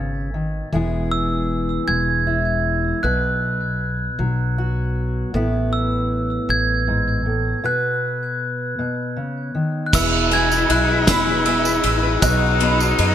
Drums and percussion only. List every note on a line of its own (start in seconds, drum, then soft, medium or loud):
9.93 kick loud
9.93 crash medium
9.93 tambourine medium
10.31 ride medium
10.52 tambourine medium
10.70 ride medium
11.07 kick medium
11.07 snare loud
11.07 ride medium
11.07 tambourine medium
11.46 ride medium
11.65 tambourine medium
11.84 ride medium
12.22 kick loud
12.22 ride medium
12.22 tambourine medium
12.60 ride medium
12.80 tambourine medium
12.99 ride medium